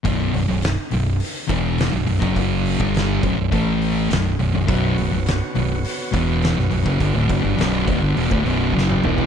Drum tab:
HH |o-o-o-o-o-o-o-o-|o-o-o-o-o-o-o-o-|o-o-o-o-o-o-o-o-|o-o-o-o-o-o-----|
SD |----o-------o---|----o-------o---|----o-------oo--|----o-------o---|
T1 |----------------|----------------|----------------|-------------o--|
T2 |----------------|----------------|----------------|--------------o-|
FT |----------------|----------------|----------------|---------------o|
BD |o---------o----o|o--o--o-o-------|o---------o----o|o-o---o--o------|